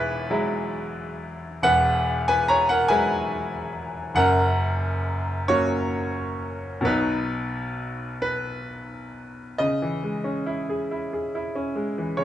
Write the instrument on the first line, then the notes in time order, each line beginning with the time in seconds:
grand piano
Already playing: E1 E2 E4 B4 C#5
0.30 F#3 G#3 E4
1.63 E1 E2 B4 F#5
2.28 B4 G#5
2.48 C#5 A#5
2.69 A#4 F#5
2.88 F#3 G#3 E4 B4 G#5
4.15 F#1 F#2 A#4 F#5
5.48 F#3 A#3 C#4 F#4 C#5
6.81 B2 F#3 B3 B4
6.85 B1 D#4
8.22 B4
9.58 C#3 D#5
9.82 E3
10.04 G#3
10.24 C#4
10.46 E4
10.69 G#4
10.91 E4
11.13 G#4
11.35 E4
11.55 C#4
11.76 G#3
11.98 E3
12.17 C#3 C#5